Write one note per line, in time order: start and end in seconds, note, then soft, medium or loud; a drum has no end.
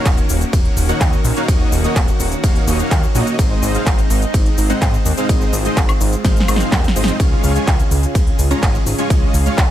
0.00 3.35 D#3 medium
0.00 0.17 A#3 medium
0.00 3.35 A#3 medium
0.00 3.35 C#4 medium
0.00 0.17 D#4 medium
0.00 0.17 F#4 medium
0.00 3.35 F#4 medium
0.00 0.17 C#5 medium
0.00 0.17 F5 medium
0.06 0.21 D#1 loud
0.06 kick loud
0.06 clap loud
0.06 closed hi-hat medium
0.06 ride medium
0.06 shaker soft
0.17 closed hi-hat soft
0.17 shaker soft
0.29 0.44 D#1 medium
0.29 open hi-hat loud
0.29 shaker medium
0.41 closed hi-hat medium
0.41 shaker soft
0.53 0.68 D#1 medium
0.53 kick loud
0.53 closed hi-hat medium
0.53 ride medium
0.53 shaker soft
0.65 closed hi-hat soft
0.77 0.92 D#1 medium
0.77 open hi-hat loud
0.77 shaker medium
0.89 0.99 A#3 medium
0.89 0.99 D#4 medium
0.89 0.99 F#4 medium
0.89 0.99 C#5 medium
0.89 0.99 F#5 medium
0.89 closed hi-hat medium
0.89 shaker soft
1.01 1.16 D#2 loud
1.01 1.16 A#3 medium
1.01 1.16 D#4 medium
1.01 1.16 F#4 medium
1.01 1.16 C#5 medium
1.01 1.16 D#5 loud
1.01 kick loud
1.01 clap loud
1.01 closed hi-hat medium
1.01 ride medium
1.01 shaker soft
1.13 shaker soft
1.25 1.32 A#1 medium
1.25 open hi-hat loud
1.25 shaker medium
1.36 1.47 A#3 medium
1.36 1.47 D#4 medium
1.36 1.47 F#4 medium
1.36 1.47 C#5 medium
1.36 1.47 F5 medium
1.36 closed hi-hat medium
1.36 shaker soft
1.48 1.63 D#1 loud
1.48 1.72 A#3 loud
1.48 1.72 D#4 medium
1.48 1.72 F#4 medium
1.48 1.72 C#5 medium
1.48 1.72 D#5 loud
1.48 kick loud
1.48 closed hi-hat medium
1.48 ride medium
1.48 shaker soft
1.72 1.87 D#1 medium
1.72 open hi-hat loud
1.72 shaker medium
1.84 1.99 A#3 medium
1.84 1.99 D#4 medium
1.84 1.99 F#4 medium
1.84 1.99 C#5 medium
1.84 1.99 D#5 medium
1.84 closed hi-hat medium
1.84 shaker soft
1.96 2.11 D#1 loud
1.96 kick loud
1.96 clap loud
1.96 closed hi-hat medium
1.96 ride medium
1.96 shaker soft
2.08 closed hi-hat soft
2.08 shaker soft
2.20 2.35 D#1 medium
2.20 open hi-hat loud
2.20 shaker medium
2.32 closed hi-hat soft
2.32 shaker soft
2.44 2.59 D#1 medium
2.44 2.65 A#3 medium
2.44 2.65 D#4 medium
2.44 2.65 F#4 medium
2.44 2.65 C#5 medium
2.44 2.65 F5 medium
2.44 kick loud
2.44 closed hi-hat medium
2.44 ride medium
2.44 shaker soft
2.56 closed hi-hat soft
2.67 2.83 D#1 medium
2.67 2.78 A#3 medium
2.67 2.78 D#4 medium
2.67 2.78 F#4 medium
2.67 2.78 C#5 medium
2.67 2.78 D#5 loud
2.67 open hi-hat loud
2.67 shaker medium
2.79 3.03 A#3 medium
2.79 3.03 D#4 medium
2.79 3.03 F#4 medium
2.79 3.03 C#5 medium
2.79 3.03 F5 medium
2.79 closed hi-hat medium
2.79 shaker soft
2.91 3.06 D#2 loud
2.91 kick loud
2.91 clap loud
2.91 closed hi-hat medium
2.91 ride medium
2.91 shaker soft
3.03 shaker soft
3.15 3.23 A#1 medium
3.15 3.36 A#3 loud
3.15 3.36 D#4 medium
3.15 3.36 F#4 medium
3.15 3.36 C#5 medium
3.15 3.36 D#5 loud
3.15 open hi-hat loud
3.15 shaker medium
3.27 closed hi-hat medium
3.27 shaker soft
3.39 3.54 G#1 loud
3.39 7.16 G#3 medium
3.39 3.72 G#3 medium
3.39 7.16 C4 medium
3.39 3.72 C4 medium
3.39 5.27 D#4 medium
3.39 3.72 D#4 medium
3.39 3.72 C5 medium
3.39 3.72 D#5 medium
3.39 kick loud
3.39 closed hi-hat medium
3.39 ride medium
3.39 shaker soft
3.63 3.78 G#1 medium
3.63 open hi-hat loud
3.63 shaker medium
3.75 3.98 G#3 medium
3.75 3.98 C4 medium
3.75 3.98 D#4 medium
3.75 3.98 C5 medium
3.75 3.98 F5 medium
3.75 closed hi-hat medium
3.75 shaker soft
3.86 4.02 G#1 loud
3.86 kick loud
3.86 clap loud
3.86 closed hi-hat medium
3.86 ride medium
3.86 shaker soft
3.98 closed hi-hat soft
3.98 shaker soft
4.10 4.25 G#1 medium
4.10 open hi-hat loud
4.10 shaker medium
4.22 closed hi-hat medium
4.22 shaker soft
4.34 4.49 G#1 medium
4.34 kick loud
4.34 closed hi-hat medium
4.34 ride medium
4.34 shaker soft
4.46 closed hi-hat soft
4.58 4.73 G#1 medium
4.58 open hi-hat loud
4.58 shaker medium
4.70 4.80 G#3 medium
4.70 4.80 C4 medium
4.70 4.80 D#4 medium
4.70 4.80 C5 medium
4.70 4.80 F#5 medium
4.70 closed hi-hat medium
4.70 shaker soft
4.82 4.97 G#2 loud
4.82 4.97 G#3 loud
4.82 4.97 C4 medium
4.82 4.97 D#4 medium
4.82 4.97 C5 medium
4.82 4.97 D#5 loud
4.82 kick loud
4.82 clap loud
4.82 closed hi-hat medium
4.82 ride medium
4.82 shaker soft
4.94 shaker soft
5.05 5.13 D#2 medium
5.05 open hi-hat loud
5.05 shaker medium
5.17 5.28 G#3 medium
5.17 5.28 C4 medium
5.17 5.28 D#4 medium
5.17 5.28 C5 medium
5.17 5.28 F5 medium
5.17 closed hi-hat medium
5.17 shaker soft
5.29 5.44 G#1 loud
5.29 5.53 G#3 loud
5.29 5.53 C4 medium
5.29 5.53 D#4 medium
5.29 9.71 F4 medium
5.29 5.53 C5 medium
5.29 5.53 D#5 loud
5.29 kick loud
5.29 closed hi-hat medium
5.29 ride medium
5.29 shaker soft
5.41 shaker soft
5.53 5.68 G#1 medium
5.53 open hi-hat loud
5.53 shaker medium
5.65 5.80 G#3 medium
5.65 5.80 C4 medium
5.65 5.80 D#4 medium
5.65 5.80 C5 medium
5.65 5.80 D#5 medium
5.65 closed hi-hat medium
5.65 shaker soft
5.77 5.92 G#1 loud
5.77 kick loud
5.77 clap loud
5.77 closed hi-hat medium
5.77 ride medium
5.77 shaker soft
5.89 closed hi-hat soft
5.89 high woodblock medium
5.89 shaker soft
6.01 6.16 G#1 medium
6.01 open hi-hat loud
6.01 shaker medium
6.13 closed hi-hat medium
6.13 shaker soft
6.24 6.40 G#1 medium
6.24 6.46 G#3 medium
6.24 6.45 C4 medium
6.24 6.46 D#4 medium
6.24 6.45 C5 medium
6.24 6.45 F5 medium
6.24 kick loud
6.24 snare medium
6.24 closed hi-hat medium
6.24 ride medium
6.24 shaker soft
6.37 snare medium
6.37 closed hi-hat soft
6.37 shaker soft
6.48 6.63 G#1 loud
6.48 6.58 G#3 medium
6.48 6.58 C4 medium
6.48 6.58 D#4 medium
6.48 6.58 C5 medium
6.48 6.58 D#5 loud
6.48 open hi-hat loud
6.48 high woodblock medium
6.48 shaker medium
6.56 6.84 G#3 medium
6.56 6.84 C4 medium
6.56 6.84 D#4 medium
6.56 6.84 C5 medium
6.56 6.84 F5 medium
6.56 snare medium
6.60 closed hi-hat medium
6.60 shaker soft
6.72 6.87 D#2 medium
6.72 kick loud
6.72 snare medium
6.72 clap loud
6.72 closed hi-hat medium
6.72 ride medium
6.72 shaker soft
6.84 snare loud
6.84 closed hi-hat soft
6.84 shaker soft
6.96 7.11 G#1 medium
6.96 7.17 G#3 loud
6.96 7.17 C4 medium
6.96 7.17 D#4 medium
6.96 7.17 C5 medium
6.96 7.17 D#5 loud
6.96 open hi-hat loud
6.96 shaker medium
7.04 snare loud
7.08 closed hi-hat medium
7.08 shaker soft
7.20 7.35 C#2 loud
7.20 9.71 C#3 medium
7.20 7.53 G#3 medium
7.20 7.53 C#4 medium
7.20 9.71 C#4 medium
7.20 7.53 F4 medium
7.20 9.71 G#4 loud
7.20 7.53 C#5 medium
7.20 7.53 F5 medium
7.20 kick loud
7.20 closed hi-hat medium
7.20 ride medium
7.20 shaker soft
7.44 7.59 C#2 medium
7.44 open hi-hat loud
7.44 shaker medium
7.55 7.79 G#3 medium
7.55 7.79 C#4 medium
7.55 7.79 F4 medium
7.55 7.79 C#5 medium
7.55 7.79 G#5 medium
7.55 closed hi-hat medium
7.55 shaker soft
7.67 7.83 C#2 loud
7.67 kick loud
7.67 clap loud
7.67 closed hi-hat medium
7.67 ride medium
7.67 shaker soft
7.79 closed hi-hat soft
7.79 shaker soft
7.91 8.06 C#2 medium
7.91 open hi-hat loud
7.91 shaker medium
8.03 closed hi-hat medium
8.03 shaker soft
8.15 8.30 C#2 loud
8.15 kick loud
8.15 closed hi-hat medium
8.15 ride medium
8.15 shaker soft
8.27 closed hi-hat soft
8.39 8.54 C#2 medium
8.39 open hi-hat loud
8.39 shaker medium
8.51 8.61 G#3 medium
8.51 8.61 C#4 medium
8.51 8.61 F4 medium
8.51 8.61 C#5 medium
8.51 8.61 A#5 medium
8.51 closed hi-hat medium
8.51 shaker soft
8.63 8.78 G#1 loud
8.63 8.77 G#3 medium
8.63 8.77 C#4 medium
8.63 8.77 F4 medium
8.63 8.77 C#5 medium
8.63 8.77 D#5 loud
8.63 kick loud
8.63 clap loud
8.63 closed hi-hat medium
8.63 ride medium
8.63 shaker soft
8.75 shaker soft
8.86 8.94 G#1 loud
8.86 open hi-hat loud
8.86 shaker medium
8.98 9.08 G#3 medium
8.98 9.08 C#4 medium
8.98 9.08 F4 medium
8.98 9.08 C#5 medium
8.98 9.08 G#5 medium
8.98 closed hi-hat medium
8.98 shaker soft
9.10 9.25 C#2 loud
9.10 9.34 G#3 loud
9.10 9.34 C#4 medium
9.10 9.34 F4 medium
9.10 9.34 C#5 medium
9.10 9.34 D#5 loud
9.10 kick loud
9.10 closed hi-hat medium
9.10 ride medium
9.10 shaker soft
9.34 9.49 C#2 loud
9.34 open hi-hat loud
9.34 shaker medium
9.46 9.61 G#3 medium
9.46 9.61 C#4 medium
9.46 9.61 F4 medium
9.46 9.61 C#5 medium
9.46 9.61 F5 medium
9.46 closed hi-hat medium
9.46 shaker soft
9.58 9.71 C#2 loud
9.58 kick loud
9.58 clap loud
9.58 closed hi-hat medium
9.58 ride medium
9.58 shaker soft